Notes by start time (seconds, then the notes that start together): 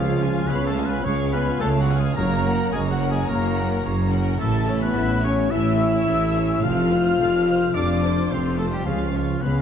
Already playing: C#2 C#3 F3 F4 G#4 C#5 F5
0.21 C#4 F4 F5 G#5
0.47 C#2 B3 G#4 B4 C#5 F5 B5
0.67 A3 A4 A5
0.77 F4 G#4 F5 G#5
0.86 B3 B4 B5
1.04 C#2 G#3 C#4 G#4 C#5 F5 C#6
1.33 B3 C#4 F4 B4 F5 G#5 B5
1.60 C#2 A3 G#4 A4 C#5 F5 A5
1.79 F#3 F#4 F#5
1.89 F4 G#4 F5 G#5
1.98 G#3 G#4 G#5
2.16 F#1 F#2 A#3 A#4 C#5 A#5
2.45 C#4 A#4 F#5
2.72 F#1 F#2 G#3 A#3 G#4 C#5 G#5 A#5
2.91 F#3 F#4 F#5
3.01 C#4 A#4 F#5
3.10 G#3 G#4 G#5
3.28 F#1 F#2 C#3 A#3 A#4 C#5 A#5
3.56 C#4 A#4 F#5
3.84 F#1 F#2 A#3 C#5 A#5
4.11 C#4 A#4 F#5
4.39 A1 A2 A3 E4 A4 E5 A5
4.66 A3 C#4 E4 C#5
4.81 B3 B4 B5
4.95 A1 A2 E4 A4 C#5 E5
5.23 C#4 E4 A4 C#5 C#6
5.51 A1 A2 E3 E4 A4 E5 E6
5.79 A3 C#4 E4 C#5
6.06 A1 A2 E4 A4 C#5 E5
6.34 C#4 E4 A4 C#5
6.63 F1 F2 F3 C4 F4 A4 F5 F6
6.90 A3 F4 C5
7.19 F1 F2 C4 A4 C5 F5
7.46 F4 A4 C5
7.74 F1 F2 C4 D4 F4 A4 D5 F5 D6
8.03 A3 F4 C5
8.31 F1 F2 C4 A4 C5 F5 C6
8.58 A3 F4 A4 C5 A5
8.72 G3 G4 G5
8.85 C#2 C#3 F3 C#4 F4 G#4 F5
9.15 C#4 F4 C#5
9.41 C#2 B3 C#4 G#4 B4 C#5 B5
9.45 F5